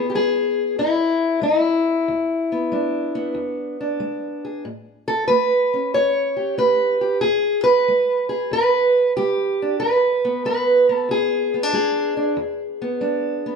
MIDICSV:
0, 0, Header, 1, 2, 480
1, 0, Start_track
1, 0, Tempo, 643777
1, 1546, Time_signature, 4, 2, 24, 8
1, 10107, End_track
2, 0, Start_track
2, 0, Title_t, "Steel-string acoustic guitar"
2, 0, Program_c, 0, 25
2, 0, Note_on_c, 0, 40, 70
2, 0, Note_on_c, 0, 59, 47
2, 72, Note_on_c, 0, 67, 66
2, 83, Note_off_c, 0, 40, 0
2, 107, Note_off_c, 0, 67, 0
2, 111, Note_on_c, 0, 56, 58
2, 114, Note_on_c, 0, 68, 95
2, 558, Note_off_c, 0, 56, 0
2, 585, Note_on_c, 0, 40, 68
2, 586, Note_off_c, 0, 68, 0
2, 589, Note_on_c, 0, 64, 90
2, 1034, Note_off_c, 0, 40, 0
2, 1054, Note_on_c, 0, 56, 65
2, 1057, Note_off_c, 0, 64, 0
2, 1066, Note_on_c, 0, 64, 74
2, 1509, Note_off_c, 0, 56, 0
2, 1537, Note_off_c, 0, 59, 0
2, 1551, Note_on_c, 0, 40, 72
2, 1879, Note_on_c, 0, 59, 45
2, 1997, Note_off_c, 0, 40, 0
2, 2026, Note_on_c, 0, 56, 58
2, 2034, Note_on_c, 0, 62, 42
2, 2340, Note_off_c, 0, 59, 0
2, 2349, Note_on_c, 0, 59, 50
2, 2474, Note_off_c, 0, 56, 0
2, 2494, Note_on_c, 0, 40, 60
2, 2505, Note_off_c, 0, 64, 0
2, 2828, Note_off_c, 0, 62, 0
2, 2837, Note_on_c, 0, 62, 43
2, 2948, Note_off_c, 0, 40, 0
2, 2982, Note_on_c, 0, 56, 60
2, 3315, Note_on_c, 0, 68, 43
2, 3432, Note_off_c, 0, 56, 0
2, 3446, Note_off_c, 0, 59, 0
2, 3449, Note_off_c, 0, 68, 0
2, 3450, Note_off_c, 0, 62, 0
2, 3466, Note_on_c, 0, 45, 66
2, 3785, Note_on_c, 0, 69, 105
2, 3914, Note_off_c, 0, 45, 0
2, 3930, Note_off_c, 0, 69, 0
2, 3933, Note_on_c, 0, 71, 99
2, 3948, Note_on_c, 0, 57, 64
2, 4276, Note_on_c, 0, 61, 46
2, 4396, Note_off_c, 0, 57, 0
2, 4419, Note_off_c, 0, 71, 0
2, 4428, Note_on_c, 0, 40, 64
2, 4432, Note_on_c, 0, 73, 110
2, 4746, Note_on_c, 0, 67, 41
2, 4876, Note_off_c, 0, 40, 0
2, 4903, Note_on_c, 0, 57, 59
2, 4907, Note_off_c, 0, 73, 0
2, 4910, Note_on_c, 0, 71, 98
2, 5219, Note_off_c, 0, 67, 0
2, 5228, Note_on_c, 0, 67, 50
2, 5354, Note_off_c, 0, 57, 0
2, 5366, Note_off_c, 0, 67, 0
2, 5371, Note_off_c, 0, 61, 0
2, 5373, Note_off_c, 0, 71, 0
2, 5376, Note_on_c, 0, 68, 94
2, 5389, Note_on_c, 0, 40, 69
2, 5691, Note_off_c, 0, 68, 0
2, 5694, Note_on_c, 0, 71, 109
2, 5837, Note_off_c, 0, 40, 0
2, 5876, Note_on_c, 0, 56, 60
2, 6179, Note_off_c, 0, 71, 0
2, 6182, Note_on_c, 0, 68, 76
2, 6322, Note_off_c, 0, 56, 0
2, 6343, Note_off_c, 0, 68, 0
2, 6347, Note_on_c, 0, 40, 65
2, 6360, Note_on_c, 0, 71, 104
2, 6797, Note_off_c, 0, 40, 0
2, 6831, Note_off_c, 0, 71, 0
2, 6834, Note_on_c, 0, 67, 85
2, 6845, Note_on_c, 0, 56, 61
2, 7174, Note_on_c, 0, 62, 47
2, 7286, Note_off_c, 0, 56, 0
2, 7302, Note_off_c, 0, 67, 0
2, 7305, Note_on_c, 0, 71, 87
2, 7322, Note_on_c, 0, 40, 71
2, 7345, Note_off_c, 0, 62, 0
2, 7640, Note_on_c, 0, 59, 50
2, 7765, Note_off_c, 0, 40, 0
2, 7787, Note_off_c, 0, 71, 0
2, 7792, Note_on_c, 0, 56, 57
2, 7798, Note_on_c, 0, 71, 96
2, 8118, Note_off_c, 0, 59, 0
2, 8121, Note_on_c, 0, 59, 50
2, 8164, Note_off_c, 0, 71, 0
2, 8164, Note_on_c, 0, 69, 96
2, 8241, Note_off_c, 0, 56, 0
2, 8268, Note_on_c, 0, 40, 65
2, 8273, Note_off_c, 0, 69, 0
2, 8284, Note_on_c, 0, 68, 99
2, 8605, Note_off_c, 0, 59, 0
2, 8605, Note_on_c, 0, 59, 47
2, 8672, Note_off_c, 0, 59, 0
2, 8672, Note_on_c, 0, 62, 38
2, 8718, Note_off_c, 0, 40, 0
2, 8746, Note_off_c, 0, 68, 0
2, 8747, Note_on_c, 0, 56, 63
2, 8755, Note_on_c, 0, 68, 76
2, 9064, Note_off_c, 0, 62, 0
2, 9073, Note_on_c, 0, 62, 51
2, 9197, Note_off_c, 0, 56, 0
2, 9210, Note_off_c, 0, 62, 0
2, 9221, Note_on_c, 0, 40, 71
2, 9556, Note_on_c, 0, 59, 48
2, 9674, Note_off_c, 0, 40, 0
2, 9699, Note_on_c, 0, 56, 57
2, 9702, Note_on_c, 0, 62, 45
2, 10033, Note_off_c, 0, 59, 0
2, 10036, Note_on_c, 0, 59, 47
2, 10107, Note_off_c, 0, 56, 0
2, 10107, Note_off_c, 0, 59, 0
2, 10107, Note_off_c, 0, 62, 0
2, 10107, Note_off_c, 0, 68, 0
2, 10107, End_track
0, 0, End_of_file